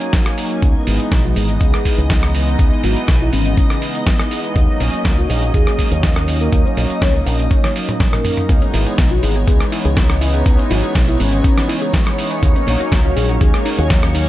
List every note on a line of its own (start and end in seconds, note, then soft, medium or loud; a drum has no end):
0.00 0.35 F#3 medium
0.00 0.35 A#3 medium
0.00 0.35 C#4 medium
0.00 0.35 D#4 medium
0.00 0.63 G#5 medium
0.00 closed hi-hat medium
0.13 kick loud
0.13 snare loud
0.13 closed hi-hat soft
0.26 cross-stick medium
0.37 0.59 F#3 loud
0.37 0.59 A#3 medium
0.37 0.60 C#4 medium
0.37 0.60 D#4 loud
0.37 open hi-hat loud
0.51 closed hi-hat medium
0.61 0.73 C#2 medium
0.61 2.31 E3 medium
0.61 2.31 G#3 medium
0.61 2.32 B3 medium
0.61 2.32 D#4 medium
0.61 8.50 D#5 medium
0.61 kick loud
0.61 closed hi-hat soft
0.61 shaker soft
0.87 0.98 G#1 loud
0.87 open hi-hat loud
0.87 shaker medium
1.00 muted fingered electric bass stroke soft
1.00 closed hi-hat medium
1.00 shaker soft
1.12 1.32 B1 medium
1.12 kick loud
1.12 snare loud
1.12 closed hi-hat medium
1.12 shaker soft
1.24 1.34 F#4 medium
1.24 shaker soft
1.36 1.56 G#1 loud
1.36 1.48 G#4 medium
1.36 open hi-hat loud
1.36 shaker medium
1.49 closed hi-hat medium
1.49 shaker soft
1.61 1.71 C#2 medium
1.61 1.98 G#4 medium
1.61 kick loud
1.61 closed hi-hat soft
1.61 shaker soft
1.74 cross-stick medium
1.74 shaker soft
1.85 kick medium
1.85 open hi-hat loud
1.85 shaker medium
1.98 2.56 C#2 medium
1.98 closed hi-hat medium
1.98 shaker soft
2.10 kick loud
2.10 snare loud
2.10 closed hi-hat soft
2.10 shaker soft
2.23 cross-stick medium
2.34 2.56 E3 medium
2.34 2.56 G#3 medium
2.34 2.56 B3 medium
2.34 2.57 D#4 medium
2.34 open hi-hat loud
2.34 shaker medium
2.48 closed hi-hat medium
2.48 shaker soft
2.58 2.70 C#2 medium
2.58 4.28 E3 medium
2.58 4.28 G#3 medium
2.58 4.28 B3 medium
2.58 4.29 D#4 medium
2.58 kick loud
2.58 closed hi-hat medium
2.58 shaker soft
2.72 shaker soft
2.83 2.94 G#1 loud
2.83 2.95 F#4 medium
2.83 open hi-hat medium
2.83 shaker medium
2.97 closed hi-hat medium
2.97 shaker soft
3.08 3.29 B1 medium
3.08 kick loud
3.08 snare loud
3.08 closed hi-hat medium
3.08 shaker soft
3.21 3.31 E4 medium
3.21 shaker soft
3.33 3.53 G#1 loud
3.33 4.02 C#4 loud
3.33 open hi-hat loud
3.33 shaker medium
3.46 closed hi-hat medium
3.46 shaker soft
3.57 kick loud
3.57 closed hi-hat soft
3.57 shaker soft
3.70 cross-stick medium
3.70 shaker soft
3.82 open hi-hat medium
3.82 shaker medium
3.95 closed hi-hat medium
3.95 shaker soft
4.07 kick loud
4.07 snare loud
4.07 closed hi-hat medium
4.07 shaker soft
4.20 cross-stick medium
4.30 4.53 E3 medium
4.30 4.53 G#3 medium
4.30 4.53 B3 medium
4.30 4.53 D#4 loud
4.30 open hi-hat loud
4.30 shaker medium
4.44 closed hi-hat medium
4.44 shaker soft
4.55 4.66 D#2 loud
4.55 6.25 F#3 medium
4.55 6.25 A#3 medium
4.55 6.25 C#4 medium
4.55 6.26 D#4 medium
4.55 kick loud
4.55 closed hi-hat soft
4.55 shaker soft
4.80 4.91 A#1 loud
4.80 open hi-hat medium
4.80 shaker medium
4.93 muted fingered electric bass stroke soft
4.93 closed hi-hat medium
4.93 shaker soft
5.05 5.25 C#2 medium
5.05 kick loud
5.05 snare loud
5.05 closed hi-hat medium
5.05 shaker soft
5.18 5.27 F#4 medium
5.18 shaker soft
5.29 5.50 A#1 loud
5.29 5.41 G#4 medium
5.29 open hi-hat loud
5.29 shaker medium
5.43 closed hi-hat medium
5.43 shaker soft
5.54 5.65 D#2 medium
5.54 5.92 G#4 loud
5.54 kick loud
5.54 closed hi-hat medium
5.54 shaker soft
5.67 cross-stick medium
5.67 shaker soft
5.79 kick medium
5.79 open hi-hat medium
5.79 shaker medium
5.92 6.49 D#2 loud
5.92 closed hi-hat medium
5.92 shaker soft
6.03 kick loud
6.03 snare loud
6.03 closed hi-hat medium
6.03 shaker soft
6.16 cross-stick medium
6.27 6.49 F#3 medium
6.27 6.50 A#3 medium
6.27 6.50 C#4 medium
6.27 6.50 D#4 loud
6.27 open hi-hat loud
6.27 shaker medium
6.41 6.48 A#4 medium
6.41 closed hi-hat medium
6.41 shaker soft
6.51 6.63 D#2 loud
6.51 8.21 F#3 medium
6.51 8.22 A#3 medium
6.51 8.22 C#4 medium
6.51 8.22 D#4 medium
6.51 kick loud
6.51 closed hi-hat medium
6.51 shaker soft
6.66 6.99 C#5 medium
6.66 shaker soft
6.77 6.88 A#1 loud
6.77 open hi-hat loud
6.77 shaker medium
6.90 closed hi-hat medium
6.90 shaker soft
7.02 7.22 C#2 medium
7.02 7.13 C#5 medium
7.02 kick loud
7.02 snare loud
7.02 closed hi-hat medium
7.02 shaker soft
7.15 shaker soft
7.26 7.47 A#1 loud
7.26 open hi-hat loud
7.26 shaker medium
7.40 closed hi-hat medium
7.40 shaker soft
7.51 7.59 C#5 medium
7.51 kick loud
7.51 closed hi-hat medium
7.51 high tom medium
7.51 shaker soft
7.64 7.71 C#5 medium
7.64 cross-stick medium
7.64 snare soft
7.64 high tom medium
7.64 shaker soft
7.76 open hi-hat loud
7.76 shaker medium
7.89 closed hi-hat medium
7.89 mid tom medium
7.89 shaker soft
8.00 kick loud
8.00 snare loud
8.00 closed hi-hat medium
8.00 mid tom medium
8.00 shaker soft
8.12 8.49 A#4 medium
8.12 cross-stick medium
8.12 mid tom medium
8.12 shaker soft
8.24 8.46 F#3 medium
8.24 8.46 A#3 medium
8.24 8.47 C#4 medium
8.24 8.47 D#4 loud
8.24 mid tom loud
8.24 open hi-hat loud
8.24 shaker medium
8.37 closed hi-hat medium
8.37 mid tom medium
8.37 shaker soft
8.48 8.60 C#2 loud
8.48 10.18 E3 medium
8.48 10.18 G#3 medium
8.48 8.54 B3 medium
8.48 10.19 B3 medium
8.48 10.19 D#4 medium
8.48 14.29 C#5 medium
8.48 kick loud
8.48 closed hi-hat medium
8.48 shaker soft
8.62 8.66 C#4 medium
8.62 closed hi-hat soft
8.62 shaker soft
8.74 8.84 G#1 loud
8.74 8.81 E4 loud
8.74 open hi-hat loud
8.74 shaker medium
8.87 8.94 G#4 medium
8.87 closed hi-hat medium
8.87 shaker soft
8.98 9.19 B1 medium
8.98 9.10 B3 medium
8.98 kick loud
8.98 snare loud
8.98 closed hi-hat medium
8.98 shaker soft
9.11 9.18 C#4 medium
9.11 9.20 F#4 medium
9.11 shaker soft
9.23 9.43 G#1 loud
9.23 9.31 E4 medium
9.23 9.35 G#4 medium
9.23 open hi-hat loud
9.23 shaker medium
9.36 9.43 G#4 medium
9.36 closed hi-hat medium
9.36 shaker soft
9.47 9.58 C#2 medium
9.47 9.52 B3 medium
9.47 9.85 G#4 medium
9.47 kick loud
9.47 closed hi-hat medium
9.47 shaker soft
9.60 9.65 C#4 medium
9.60 cross-stick medium
9.60 shaker soft
9.72 9.80 E4 loud
9.72 open hi-hat loud
9.72 shaker medium
9.85 10.43 C#2 loud
9.85 9.92 G#4 medium
9.85 closed hi-hat medium
9.85 shaker soft
9.97 10.08 B3 medium
9.97 kick loud
9.97 snare loud
9.97 closed hi-hat medium
9.97 shaker soft
10.09 10.16 C#4 medium
10.09 cross-stick medium
10.09 shaker soft
10.21 10.43 E3 medium
10.21 10.43 G#3 medium
10.21 10.43 B3 medium
10.21 10.43 D#4 medium
10.21 10.29 E4 medium
10.21 open hi-hat loud
10.21 shaker medium
10.34 10.41 G#4 medium
10.34 closed hi-hat medium
10.34 shaker soft
10.45 10.57 C#2 loud
10.45 12.15 E3 medium
10.45 12.15 G#3 medium
10.45 10.50 B3 medium
10.45 12.15 B3 medium
10.45 12.16 D#4 medium
10.45 kick loud
10.45 closed hi-hat medium
10.45 shaker soft
10.58 10.63 C#4 medium
10.58 closed hi-hat soft
10.58 shaker soft
10.70 10.81 G#1 loud
10.70 10.78 E4 loud
10.70 10.82 F#4 loud
10.70 open hi-hat loud
10.70 shaker medium
10.83 10.90 G#4 medium
10.83 closed hi-hat medium
10.83 shaker soft
10.95 11.16 B1 medium
10.95 11.06 B3 medium
10.95 kick loud
10.95 snare loud
10.95 closed hi-hat medium
10.95 shaker soft
11.08 11.15 C#4 medium
11.08 11.18 E4 loud
11.08 closed hi-hat soft
11.08 shaker soft
11.19 11.40 G#1 loud
11.19 11.89 C#4 loud
11.19 11.27 E4 medium
11.19 open hi-hat loud
11.19 shaker medium
11.32 11.39 G#4 medium
11.32 closed hi-hat medium
11.32 shaker soft
11.44 11.49 B3 medium
11.44 kick loud
11.44 closed hi-hat medium
11.44 shaker soft
11.57 11.61 C#4 medium
11.57 cross-stick medium
11.57 snare soft
11.57 closed hi-hat soft
11.57 shaker soft
11.69 11.76 E4 loud
11.69 open hi-hat loud
11.69 shaker medium
11.82 11.89 G#4 medium
11.82 closed hi-hat medium
11.82 shaker soft
11.93 12.05 B3 medium
11.93 kick loud
11.93 snare loud
11.93 closed hi-hat medium
11.93 shaker soft
12.06 12.13 C#4 medium
12.06 cross-stick medium
12.06 shaker soft
12.18 12.40 E3 medium
12.18 12.40 G#3 medium
12.18 12.40 B3 medium
12.18 12.40 D#4 medium
12.18 12.26 E4 medium
12.18 open hi-hat loud
12.18 shaker medium
12.31 12.38 G#4 medium
12.31 closed hi-hat medium
12.31 shaker soft
12.42 12.53 D#2 loud
12.42 14.12 F#3 medium
12.42 14.12 A#3 medium
12.42 12.47 A#3 medium
12.42 14.12 C#4 medium
12.42 14.13 D#4 medium
12.42 kick loud
12.42 closed hi-hat medium
12.42 shaker soft
12.55 12.60 C#4 medium
12.55 closed hi-hat soft
12.55 shaker soft
12.67 12.78 A#1 loud
12.67 12.75 D#4 loud
12.67 open hi-hat loud
12.67 shaker medium
12.80 12.87 F#4 medium
12.80 closed hi-hat medium
12.80 shaker soft
12.92 13.12 C#2 medium
12.92 13.03 A#3 medium
12.92 kick loud
12.92 snare loud
12.92 closed hi-hat medium
12.92 shaker soft
13.05 13.12 C#4 medium
13.05 13.14 F#4 loud
13.05 shaker soft
13.16 13.37 A#1 loud
13.16 13.24 D#4 medium
13.16 13.28 G#4 medium
13.16 open hi-hat loud
13.16 shaker medium
13.29 13.36 F#4 medium
13.29 closed hi-hat medium
13.29 shaker soft
13.41 13.52 D#2 medium
13.41 13.46 A#3 medium
13.41 13.78 G#4 medium
13.41 kick loud
13.41 closed hi-hat medium
13.41 shaker soft
13.54 13.58 C#4 medium
13.54 cross-stick medium
13.54 shaker soft
13.65 13.73 D#4 loud
13.65 open hi-hat loud
13.65 shaker medium
13.78 14.29 D#2 loud
13.78 13.85 F#4 medium
13.78 closed hi-hat medium
13.78 shaker soft
13.90 14.02 A#3 medium
13.90 kick loud
13.90 snare loud
13.90 closed hi-hat medium
13.90 shaker soft
14.03 14.10 C#4 medium
14.03 cross-stick medium
14.03 shaker soft
14.14 14.29 F#3 medium
14.14 14.29 A#3 medium
14.14 14.29 C#4 medium
14.14 14.22 D#4 medium
14.14 14.29 D#4 loud
14.14 open hi-hat loud
14.14 shaker medium